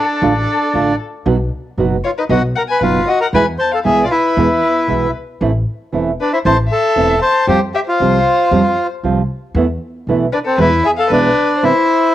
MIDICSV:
0, 0, Header, 1, 5, 480
1, 0, Start_track
1, 0, Tempo, 517688
1, 1170, Time_signature, 4, 2, 24, 8
1, 11264, End_track
2, 0, Start_track
2, 0, Title_t, "Violin"
2, 0, Program_c, 0, 40
2, 0, Note_on_c, 0, 69, 63
2, 901, Note_off_c, 0, 69, 0
2, 1893, Note_on_c, 0, 73, 53
2, 1946, Note_off_c, 0, 73, 0
2, 2020, Note_on_c, 0, 71, 47
2, 2072, Note_off_c, 0, 71, 0
2, 2133, Note_on_c, 0, 75, 56
2, 2240, Note_off_c, 0, 75, 0
2, 2371, Note_on_c, 0, 78, 54
2, 2424, Note_off_c, 0, 78, 0
2, 2493, Note_on_c, 0, 80, 61
2, 2602, Note_off_c, 0, 80, 0
2, 2622, Note_on_c, 0, 71, 57
2, 2839, Note_off_c, 0, 71, 0
2, 2853, Note_on_c, 0, 75, 51
2, 2963, Note_off_c, 0, 75, 0
2, 2987, Note_on_c, 0, 78, 63
2, 3036, Note_off_c, 0, 78, 0
2, 3100, Note_on_c, 0, 80, 62
2, 3206, Note_off_c, 0, 80, 0
2, 3340, Note_on_c, 0, 81, 62
2, 3446, Note_off_c, 0, 81, 0
2, 3454, Note_on_c, 0, 77, 55
2, 3507, Note_off_c, 0, 77, 0
2, 3575, Note_on_c, 0, 76, 68
2, 3735, Note_off_c, 0, 76, 0
2, 3746, Note_on_c, 0, 74, 37
2, 3806, Note_off_c, 0, 74, 0
2, 3812, Note_on_c, 0, 71, 60
2, 4736, Note_off_c, 0, 71, 0
2, 5755, Note_on_c, 0, 71, 53
2, 5859, Note_off_c, 0, 71, 0
2, 5871, Note_on_c, 0, 72, 54
2, 5923, Note_off_c, 0, 72, 0
2, 5987, Note_on_c, 0, 81, 63
2, 6093, Note_off_c, 0, 81, 0
2, 6211, Note_on_c, 0, 76, 64
2, 6662, Note_off_c, 0, 76, 0
2, 6699, Note_on_c, 0, 81, 59
2, 6922, Note_off_c, 0, 81, 0
2, 6939, Note_on_c, 0, 72, 59
2, 7047, Note_off_c, 0, 72, 0
2, 7186, Note_on_c, 0, 76, 58
2, 7238, Note_off_c, 0, 76, 0
2, 7298, Note_on_c, 0, 72, 60
2, 8219, Note_off_c, 0, 72, 0
2, 9572, Note_on_c, 0, 71, 61
2, 9626, Note_off_c, 0, 71, 0
2, 9694, Note_on_c, 0, 69, 56
2, 9805, Note_off_c, 0, 69, 0
2, 9816, Note_on_c, 0, 71, 64
2, 10037, Note_off_c, 0, 71, 0
2, 10056, Note_on_c, 0, 76, 60
2, 10109, Note_off_c, 0, 76, 0
2, 10174, Note_on_c, 0, 77, 69
2, 10285, Note_off_c, 0, 77, 0
2, 10296, Note_on_c, 0, 71, 61
2, 10741, Note_off_c, 0, 71, 0
2, 10772, Note_on_c, 0, 72, 66
2, 11264, Note_off_c, 0, 72, 0
2, 11264, End_track
3, 0, Start_track
3, 0, Title_t, "Bandoneon"
3, 0, Program_c, 1, 23
3, 0, Note_on_c, 1, 62, 59
3, 887, Note_off_c, 1, 62, 0
3, 1905, Note_on_c, 1, 65, 59
3, 1956, Note_off_c, 1, 65, 0
3, 2031, Note_on_c, 1, 63, 60
3, 2080, Note_off_c, 1, 63, 0
3, 2144, Note_on_c, 1, 66, 67
3, 2248, Note_off_c, 1, 66, 0
3, 2388, Note_on_c, 1, 70, 64
3, 2438, Note_off_c, 1, 70, 0
3, 2512, Note_on_c, 1, 71, 64
3, 2612, Note_off_c, 1, 71, 0
3, 2619, Note_on_c, 1, 65, 67
3, 2858, Note_on_c, 1, 66, 63
3, 2861, Note_off_c, 1, 65, 0
3, 2965, Note_off_c, 1, 66, 0
3, 2974, Note_on_c, 1, 70, 62
3, 3027, Note_off_c, 1, 70, 0
3, 3100, Note_on_c, 1, 71, 83
3, 3206, Note_off_c, 1, 71, 0
3, 3326, Note_on_c, 1, 72, 77
3, 3451, Note_off_c, 1, 72, 0
3, 3468, Note_on_c, 1, 69, 68
3, 3518, Note_off_c, 1, 69, 0
3, 3573, Note_on_c, 1, 68, 63
3, 3750, Note_on_c, 1, 65, 45
3, 3752, Note_off_c, 1, 68, 0
3, 3809, Note_on_c, 1, 64, 60
3, 3812, Note_off_c, 1, 65, 0
3, 4735, Note_off_c, 1, 64, 0
3, 5760, Note_on_c, 1, 62, 61
3, 5862, Note_off_c, 1, 62, 0
3, 5870, Note_on_c, 1, 64, 60
3, 5921, Note_off_c, 1, 64, 0
3, 5989, Note_on_c, 1, 72, 78
3, 6095, Note_off_c, 1, 72, 0
3, 6232, Note_on_c, 1, 69, 75
3, 6673, Note_off_c, 1, 69, 0
3, 6697, Note_on_c, 1, 72, 77
3, 6921, Note_off_c, 1, 72, 0
3, 6939, Note_on_c, 1, 67, 75
3, 7047, Note_off_c, 1, 67, 0
3, 7181, Note_on_c, 1, 67, 71
3, 7235, Note_off_c, 1, 67, 0
3, 7311, Note_on_c, 1, 65, 68
3, 8226, Note_off_c, 1, 65, 0
3, 9583, Note_on_c, 1, 62, 60
3, 9635, Note_off_c, 1, 62, 0
3, 9702, Note_on_c, 1, 60, 62
3, 9821, Note_off_c, 1, 60, 0
3, 9830, Note_on_c, 1, 64, 80
3, 10064, Note_on_c, 1, 68, 80
3, 10068, Note_off_c, 1, 64, 0
3, 10115, Note_off_c, 1, 68, 0
3, 10192, Note_on_c, 1, 69, 84
3, 10306, Note_off_c, 1, 69, 0
3, 10310, Note_on_c, 1, 62, 76
3, 10792, Note_on_c, 1, 64, 81
3, 10795, Note_off_c, 1, 62, 0
3, 11264, Note_off_c, 1, 64, 0
3, 11264, End_track
4, 0, Start_track
4, 0, Title_t, "Nylon-string guitar"
4, 0, Program_c, 2, 24
4, 199, Note_on_c, 2, 50, 70
4, 206, Note_on_c, 2, 57, 72
4, 211, Note_on_c, 2, 62, 77
4, 212, Note_on_c, 2, 65, 73
4, 288, Note_off_c, 2, 50, 0
4, 291, Note_off_c, 2, 57, 0
4, 294, Note_off_c, 2, 62, 0
4, 294, Note_off_c, 2, 65, 0
4, 691, Note_on_c, 2, 50, 46
4, 694, Note_on_c, 2, 57, 58
4, 696, Note_on_c, 2, 62, 54
4, 697, Note_on_c, 2, 65, 58
4, 849, Note_off_c, 2, 50, 0
4, 850, Note_off_c, 2, 57, 0
4, 851, Note_off_c, 2, 62, 0
4, 852, Note_off_c, 2, 65, 0
4, 1164, Note_on_c, 2, 47, 65
4, 1168, Note_on_c, 2, 54, 64
4, 1171, Note_on_c, 2, 59, 62
4, 1171, Note_on_c, 2, 63, 67
4, 1174, Note_on_c, 2, 66, 70
4, 1250, Note_off_c, 2, 47, 0
4, 1252, Note_off_c, 2, 54, 0
4, 1254, Note_off_c, 2, 59, 0
4, 1254, Note_off_c, 2, 63, 0
4, 1255, Note_off_c, 2, 66, 0
4, 1650, Note_on_c, 2, 47, 53
4, 1650, Note_on_c, 2, 54, 55
4, 1655, Note_on_c, 2, 59, 56
4, 1659, Note_on_c, 2, 63, 55
4, 1664, Note_on_c, 2, 66, 57
4, 1808, Note_off_c, 2, 47, 0
4, 1808, Note_off_c, 2, 54, 0
4, 1810, Note_off_c, 2, 59, 0
4, 1812, Note_off_c, 2, 63, 0
4, 1815, Note_off_c, 2, 66, 0
4, 2126, Note_on_c, 2, 47, 63
4, 2134, Note_on_c, 2, 54, 67
4, 2134, Note_on_c, 2, 59, 77
4, 2136, Note_on_c, 2, 63, 69
4, 2138, Note_on_c, 2, 66, 82
4, 2211, Note_off_c, 2, 47, 0
4, 2215, Note_off_c, 2, 54, 0
4, 2215, Note_off_c, 2, 59, 0
4, 2216, Note_off_c, 2, 63, 0
4, 2217, Note_off_c, 2, 66, 0
4, 2606, Note_on_c, 2, 47, 47
4, 2614, Note_on_c, 2, 59, 56
4, 2615, Note_on_c, 2, 54, 52
4, 2621, Note_on_c, 2, 66, 51
4, 2622, Note_on_c, 2, 63, 57
4, 2765, Note_off_c, 2, 47, 0
4, 2769, Note_off_c, 2, 54, 0
4, 2769, Note_off_c, 2, 59, 0
4, 2773, Note_off_c, 2, 63, 0
4, 2773, Note_off_c, 2, 66, 0
4, 3091, Note_on_c, 2, 47, 58
4, 3099, Note_on_c, 2, 56, 65
4, 3100, Note_on_c, 2, 52, 64
4, 3100, Note_on_c, 2, 64, 75
4, 3104, Note_on_c, 2, 59, 60
4, 3173, Note_off_c, 2, 47, 0
4, 3177, Note_off_c, 2, 56, 0
4, 3178, Note_off_c, 2, 52, 0
4, 3178, Note_off_c, 2, 64, 0
4, 3180, Note_off_c, 2, 59, 0
4, 3566, Note_on_c, 2, 52, 45
4, 3568, Note_on_c, 2, 47, 48
4, 3568, Note_on_c, 2, 56, 54
4, 3568, Note_on_c, 2, 59, 48
4, 3573, Note_on_c, 2, 64, 52
4, 3725, Note_off_c, 2, 52, 0
4, 3726, Note_off_c, 2, 56, 0
4, 3727, Note_off_c, 2, 47, 0
4, 3727, Note_off_c, 2, 59, 0
4, 3729, Note_off_c, 2, 64, 0
4, 4053, Note_on_c, 2, 47, 61
4, 4055, Note_on_c, 2, 52, 69
4, 4059, Note_on_c, 2, 56, 75
4, 4061, Note_on_c, 2, 59, 73
4, 4062, Note_on_c, 2, 64, 73
4, 4135, Note_off_c, 2, 47, 0
4, 4136, Note_off_c, 2, 52, 0
4, 4138, Note_off_c, 2, 56, 0
4, 4139, Note_off_c, 2, 59, 0
4, 4139, Note_off_c, 2, 64, 0
4, 4519, Note_on_c, 2, 47, 49
4, 4522, Note_on_c, 2, 56, 49
4, 4526, Note_on_c, 2, 52, 52
4, 4528, Note_on_c, 2, 59, 51
4, 4530, Note_on_c, 2, 64, 53
4, 4684, Note_off_c, 2, 47, 0
4, 4685, Note_off_c, 2, 56, 0
4, 4687, Note_off_c, 2, 52, 0
4, 4688, Note_off_c, 2, 59, 0
4, 4689, Note_off_c, 2, 64, 0
4, 5011, Note_on_c, 2, 52, 61
4, 5018, Note_on_c, 2, 57, 61
4, 5021, Note_on_c, 2, 60, 69
4, 5025, Note_on_c, 2, 64, 69
4, 5096, Note_off_c, 2, 52, 0
4, 5100, Note_off_c, 2, 57, 0
4, 5101, Note_off_c, 2, 60, 0
4, 5103, Note_off_c, 2, 64, 0
4, 5492, Note_on_c, 2, 52, 57
4, 5504, Note_on_c, 2, 57, 54
4, 5505, Note_on_c, 2, 60, 56
4, 5505, Note_on_c, 2, 64, 53
4, 5653, Note_off_c, 2, 52, 0
4, 5659, Note_off_c, 2, 57, 0
4, 5659, Note_off_c, 2, 60, 0
4, 5660, Note_off_c, 2, 64, 0
4, 5981, Note_on_c, 2, 52, 65
4, 5981, Note_on_c, 2, 57, 62
4, 5986, Note_on_c, 2, 60, 77
4, 5992, Note_on_c, 2, 64, 77
4, 6063, Note_off_c, 2, 52, 0
4, 6064, Note_off_c, 2, 57, 0
4, 6066, Note_off_c, 2, 60, 0
4, 6069, Note_off_c, 2, 64, 0
4, 6451, Note_on_c, 2, 52, 45
4, 6462, Note_on_c, 2, 60, 54
4, 6464, Note_on_c, 2, 57, 48
4, 6467, Note_on_c, 2, 64, 56
4, 6613, Note_off_c, 2, 52, 0
4, 6619, Note_off_c, 2, 60, 0
4, 6620, Note_off_c, 2, 57, 0
4, 6621, Note_off_c, 2, 64, 0
4, 6932, Note_on_c, 2, 53, 59
4, 6943, Note_on_c, 2, 55, 62
4, 6945, Note_on_c, 2, 60, 68
4, 6949, Note_on_c, 2, 65, 64
4, 7019, Note_off_c, 2, 53, 0
4, 7025, Note_off_c, 2, 55, 0
4, 7026, Note_off_c, 2, 60, 0
4, 7028, Note_off_c, 2, 65, 0
4, 7426, Note_on_c, 2, 53, 54
4, 7430, Note_on_c, 2, 55, 60
4, 7432, Note_on_c, 2, 60, 52
4, 7433, Note_on_c, 2, 65, 55
4, 7580, Note_off_c, 2, 53, 0
4, 7582, Note_off_c, 2, 55, 0
4, 7583, Note_off_c, 2, 60, 0
4, 7583, Note_off_c, 2, 65, 0
4, 7896, Note_on_c, 2, 53, 68
4, 7900, Note_on_c, 2, 55, 72
4, 7901, Note_on_c, 2, 60, 69
4, 7905, Note_on_c, 2, 65, 80
4, 7980, Note_off_c, 2, 53, 0
4, 7982, Note_off_c, 2, 55, 0
4, 7983, Note_off_c, 2, 60, 0
4, 7985, Note_off_c, 2, 65, 0
4, 8378, Note_on_c, 2, 53, 53
4, 8383, Note_on_c, 2, 60, 60
4, 8384, Note_on_c, 2, 55, 56
4, 8389, Note_on_c, 2, 65, 54
4, 8535, Note_off_c, 2, 53, 0
4, 8537, Note_off_c, 2, 60, 0
4, 8538, Note_off_c, 2, 55, 0
4, 8540, Note_off_c, 2, 65, 0
4, 8859, Note_on_c, 2, 52, 66
4, 8863, Note_on_c, 2, 57, 71
4, 8867, Note_on_c, 2, 59, 70
4, 8871, Note_on_c, 2, 64, 69
4, 8941, Note_off_c, 2, 52, 0
4, 8943, Note_off_c, 2, 57, 0
4, 8945, Note_off_c, 2, 59, 0
4, 8947, Note_off_c, 2, 64, 0
4, 9349, Note_on_c, 2, 52, 58
4, 9349, Note_on_c, 2, 57, 63
4, 9355, Note_on_c, 2, 59, 62
4, 9358, Note_on_c, 2, 64, 58
4, 9499, Note_off_c, 2, 52, 0
4, 9499, Note_off_c, 2, 57, 0
4, 9502, Note_off_c, 2, 59, 0
4, 9504, Note_off_c, 2, 64, 0
4, 9819, Note_on_c, 2, 52, 77
4, 9821, Note_on_c, 2, 47, 67
4, 9822, Note_on_c, 2, 56, 78
4, 9826, Note_on_c, 2, 64, 77
4, 9827, Note_on_c, 2, 59, 80
4, 9900, Note_off_c, 2, 52, 0
4, 9901, Note_off_c, 2, 47, 0
4, 9901, Note_off_c, 2, 56, 0
4, 9903, Note_off_c, 2, 59, 0
4, 9903, Note_off_c, 2, 64, 0
4, 10300, Note_on_c, 2, 47, 53
4, 10303, Note_on_c, 2, 59, 58
4, 10304, Note_on_c, 2, 52, 58
4, 10306, Note_on_c, 2, 56, 55
4, 10310, Note_on_c, 2, 64, 58
4, 10454, Note_off_c, 2, 47, 0
4, 10456, Note_off_c, 2, 52, 0
4, 10456, Note_off_c, 2, 59, 0
4, 10457, Note_off_c, 2, 56, 0
4, 10459, Note_off_c, 2, 64, 0
4, 10781, Note_on_c, 2, 52, 58
4, 10782, Note_on_c, 2, 48, 64
4, 10786, Note_on_c, 2, 59, 66
4, 10787, Note_on_c, 2, 60, 59
4, 10791, Note_on_c, 2, 64, 72
4, 10860, Note_off_c, 2, 52, 0
4, 10861, Note_off_c, 2, 48, 0
4, 10863, Note_off_c, 2, 59, 0
4, 10863, Note_off_c, 2, 60, 0
4, 10866, Note_off_c, 2, 64, 0
4, 11264, End_track
5, 0, Start_track
5, 0, Title_t, "Upright bass"
5, 0, Program_c, 3, 32
5, 201, Note_on_c, 3, 33, 71
5, 407, Note_off_c, 3, 33, 0
5, 685, Note_on_c, 3, 33, 46
5, 889, Note_off_c, 3, 33, 0
5, 1168, Note_on_c, 3, 35, 77
5, 1370, Note_off_c, 3, 35, 0
5, 1645, Note_on_c, 3, 30, 47
5, 1849, Note_off_c, 3, 30, 0
5, 2127, Note_on_c, 3, 35, 76
5, 2329, Note_off_c, 3, 35, 0
5, 2604, Note_on_c, 3, 30, 46
5, 2808, Note_off_c, 3, 30, 0
5, 3086, Note_on_c, 3, 40, 75
5, 3289, Note_off_c, 3, 40, 0
5, 3569, Note_on_c, 3, 35, 43
5, 3771, Note_off_c, 3, 35, 0
5, 4050, Note_on_c, 3, 40, 76
5, 4252, Note_off_c, 3, 40, 0
5, 4536, Note_on_c, 3, 35, 44
5, 4736, Note_off_c, 3, 35, 0
5, 5014, Note_on_c, 3, 33, 72
5, 5217, Note_off_c, 3, 33, 0
5, 5497, Note_on_c, 3, 28, 41
5, 5699, Note_off_c, 3, 28, 0
5, 5981, Note_on_c, 3, 33, 78
5, 6182, Note_off_c, 3, 33, 0
5, 6461, Note_on_c, 3, 28, 46
5, 6662, Note_off_c, 3, 28, 0
5, 6931, Note_on_c, 3, 41, 69
5, 7137, Note_off_c, 3, 41, 0
5, 7420, Note_on_c, 3, 36, 45
5, 7621, Note_off_c, 3, 36, 0
5, 7895, Note_on_c, 3, 41, 76
5, 8097, Note_off_c, 3, 41, 0
5, 8376, Note_on_c, 3, 36, 46
5, 8578, Note_off_c, 3, 36, 0
5, 8850, Note_on_c, 3, 40, 75
5, 9054, Note_off_c, 3, 40, 0
5, 9335, Note_on_c, 3, 35, 48
5, 9536, Note_off_c, 3, 35, 0
5, 9809, Note_on_c, 3, 40, 75
5, 10012, Note_off_c, 3, 40, 0
5, 10292, Note_on_c, 3, 35, 45
5, 10494, Note_off_c, 3, 35, 0
5, 11264, End_track
0, 0, End_of_file